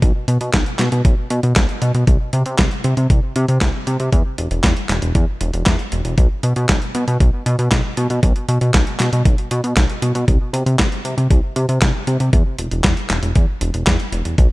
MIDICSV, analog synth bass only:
0, 0, Header, 1, 2, 480
1, 0, Start_track
1, 0, Tempo, 512821
1, 22, Time_signature, 4, 2, 24, 8
1, 13593, End_track
2, 0, Start_track
2, 0, Title_t, "Analog synth bass"
2, 0, Program_c, 0, 38
2, 22, Note_on_c, 0, 35, 98
2, 115, Note_off_c, 0, 35, 0
2, 262, Note_on_c, 0, 47, 92
2, 354, Note_off_c, 0, 47, 0
2, 381, Note_on_c, 0, 47, 96
2, 474, Note_off_c, 0, 47, 0
2, 502, Note_on_c, 0, 35, 79
2, 594, Note_off_c, 0, 35, 0
2, 742, Note_on_c, 0, 47, 93
2, 835, Note_off_c, 0, 47, 0
2, 862, Note_on_c, 0, 47, 94
2, 955, Note_off_c, 0, 47, 0
2, 982, Note_on_c, 0, 35, 104
2, 1074, Note_off_c, 0, 35, 0
2, 1222, Note_on_c, 0, 47, 100
2, 1314, Note_off_c, 0, 47, 0
2, 1342, Note_on_c, 0, 47, 96
2, 1435, Note_off_c, 0, 47, 0
2, 1462, Note_on_c, 0, 35, 110
2, 1555, Note_off_c, 0, 35, 0
2, 1702, Note_on_c, 0, 47, 93
2, 1794, Note_off_c, 0, 47, 0
2, 1821, Note_on_c, 0, 47, 94
2, 1914, Note_off_c, 0, 47, 0
2, 1942, Note_on_c, 0, 36, 97
2, 2035, Note_off_c, 0, 36, 0
2, 2183, Note_on_c, 0, 48, 90
2, 2275, Note_off_c, 0, 48, 0
2, 2302, Note_on_c, 0, 48, 95
2, 2395, Note_off_c, 0, 48, 0
2, 2421, Note_on_c, 0, 36, 80
2, 2514, Note_off_c, 0, 36, 0
2, 2663, Note_on_c, 0, 48, 90
2, 2755, Note_off_c, 0, 48, 0
2, 2782, Note_on_c, 0, 48, 96
2, 2875, Note_off_c, 0, 48, 0
2, 2902, Note_on_c, 0, 36, 98
2, 2994, Note_off_c, 0, 36, 0
2, 3143, Note_on_c, 0, 48, 103
2, 3235, Note_off_c, 0, 48, 0
2, 3263, Note_on_c, 0, 48, 95
2, 3355, Note_off_c, 0, 48, 0
2, 3382, Note_on_c, 0, 36, 106
2, 3475, Note_off_c, 0, 36, 0
2, 3622, Note_on_c, 0, 48, 97
2, 3715, Note_off_c, 0, 48, 0
2, 3743, Note_on_c, 0, 48, 95
2, 3835, Note_off_c, 0, 48, 0
2, 3862, Note_on_c, 0, 40, 97
2, 3955, Note_off_c, 0, 40, 0
2, 4103, Note_on_c, 0, 28, 90
2, 4195, Note_off_c, 0, 28, 0
2, 4221, Note_on_c, 0, 28, 93
2, 4314, Note_off_c, 0, 28, 0
2, 4342, Note_on_c, 0, 40, 81
2, 4434, Note_off_c, 0, 40, 0
2, 4582, Note_on_c, 0, 28, 92
2, 4675, Note_off_c, 0, 28, 0
2, 4703, Note_on_c, 0, 28, 94
2, 4795, Note_off_c, 0, 28, 0
2, 4821, Note_on_c, 0, 40, 101
2, 4914, Note_off_c, 0, 40, 0
2, 5063, Note_on_c, 0, 28, 105
2, 5155, Note_off_c, 0, 28, 0
2, 5184, Note_on_c, 0, 28, 97
2, 5275, Note_off_c, 0, 28, 0
2, 5302, Note_on_c, 0, 40, 107
2, 5395, Note_off_c, 0, 40, 0
2, 5544, Note_on_c, 0, 28, 94
2, 5636, Note_off_c, 0, 28, 0
2, 5664, Note_on_c, 0, 28, 97
2, 5755, Note_off_c, 0, 28, 0
2, 5783, Note_on_c, 0, 35, 97
2, 5875, Note_off_c, 0, 35, 0
2, 6022, Note_on_c, 0, 47, 90
2, 6115, Note_off_c, 0, 47, 0
2, 6144, Note_on_c, 0, 47, 92
2, 6235, Note_off_c, 0, 47, 0
2, 6263, Note_on_c, 0, 35, 83
2, 6355, Note_off_c, 0, 35, 0
2, 6504, Note_on_c, 0, 47, 92
2, 6595, Note_off_c, 0, 47, 0
2, 6624, Note_on_c, 0, 47, 96
2, 6716, Note_off_c, 0, 47, 0
2, 6743, Note_on_c, 0, 35, 105
2, 6835, Note_off_c, 0, 35, 0
2, 6984, Note_on_c, 0, 47, 103
2, 7075, Note_off_c, 0, 47, 0
2, 7103, Note_on_c, 0, 47, 93
2, 7195, Note_off_c, 0, 47, 0
2, 7223, Note_on_c, 0, 35, 109
2, 7315, Note_off_c, 0, 35, 0
2, 7464, Note_on_c, 0, 47, 96
2, 7555, Note_off_c, 0, 47, 0
2, 7584, Note_on_c, 0, 47, 94
2, 7675, Note_off_c, 0, 47, 0
2, 7703, Note_on_c, 0, 35, 99
2, 7795, Note_off_c, 0, 35, 0
2, 7942, Note_on_c, 0, 47, 91
2, 8035, Note_off_c, 0, 47, 0
2, 8062, Note_on_c, 0, 47, 94
2, 8154, Note_off_c, 0, 47, 0
2, 8183, Note_on_c, 0, 35, 79
2, 8275, Note_off_c, 0, 35, 0
2, 8423, Note_on_c, 0, 47, 91
2, 8515, Note_off_c, 0, 47, 0
2, 8544, Note_on_c, 0, 47, 93
2, 8635, Note_off_c, 0, 47, 0
2, 8662, Note_on_c, 0, 35, 98
2, 8755, Note_off_c, 0, 35, 0
2, 8902, Note_on_c, 0, 47, 100
2, 8995, Note_off_c, 0, 47, 0
2, 9022, Note_on_c, 0, 47, 96
2, 9115, Note_off_c, 0, 47, 0
2, 9143, Note_on_c, 0, 35, 109
2, 9235, Note_off_c, 0, 35, 0
2, 9382, Note_on_c, 0, 47, 93
2, 9474, Note_off_c, 0, 47, 0
2, 9501, Note_on_c, 0, 47, 96
2, 9594, Note_off_c, 0, 47, 0
2, 9622, Note_on_c, 0, 36, 97
2, 9714, Note_off_c, 0, 36, 0
2, 9859, Note_on_c, 0, 48, 92
2, 9953, Note_off_c, 0, 48, 0
2, 9980, Note_on_c, 0, 48, 93
2, 10074, Note_off_c, 0, 48, 0
2, 10103, Note_on_c, 0, 36, 80
2, 10195, Note_off_c, 0, 36, 0
2, 10340, Note_on_c, 0, 48, 92
2, 10434, Note_off_c, 0, 48, 0
2, 10461, Note_on_c, 0, 48, 97
2, 10554, Note_off_c, 0, 48, 0
2, 10582, Note_on_c, 0, 36, 102
2, 10675, Note_off_c, 0, 36, 0
2, 10821, Note_on_c, 0, 48, 102
2, 10914, Note_off_c, 0, 48, 0
2, 10941, Note_on_c, 0, 48, 97
2, 11034, Note_off_c, 0, 48, 0
2, 11062, Note_on_c, 0, 36, 107
2, 11155, Note_off_c, 0, 36, 0
2, 11301, Note_on_c, 0, 48, 91
2, 11394, Note_off_c, 0, 48, 0
2, 11422, Note_on_c, 0, 48, 92
2, 11514, Note_off_c, 0, 48, 0
2, 11542, Note_on_c, 0, 40, 96
2, 11634, Note_off_c, 0, 40, 0
2, 11781, Note_on_c, 0, 28, 93
2, 11874, Note_off_c, 0, 28, 0
2, 11900, Note_on_c, 0, 28, 93
2, 11994, Note_off_c, 0, 28, 0
2, 12022, Note_on_c, 0, 40, 81
2, 12114, Note_off_c, 0, 40, 0
2, 12261, Note_on_c, 0, 28, 91
2, 12354, Note_off_c, 0, 28, 0
2, 12380, Note_on_c, 0, 28, 97
2, 12474, Note_off_c, 0, 28, 0
2, 12502, Note_on_c, 0, 40, 100
2, 12595, Note_off_c, 0, 40, 0
2, 12740, Note_on_c, 0, 28, 105
2, 12834, Note_off_c, 0, 28, 0
2, 12860, Note_on_c, 0, 28, 94
2, 12953, Note_off_c, 0, 28, 0
2, 12982, Note_on_c, 0, 40, 110
2, 13075, Note_off_c, 0, 40, 0
2, 13221, Note_on_c, 0, 28, 93
2, 13314, Note_off_c, 0, 28, 0
2, 13341, Note_on_c, 0, 28, 95
2, 13434, Note_off_c, 0, 28, 0
2, 13463, Note_on_c, 0, 35, 99
2, 13555, Note_off_c, 0, 35, 0
2, 13593, End_track
0, 0, End_of_file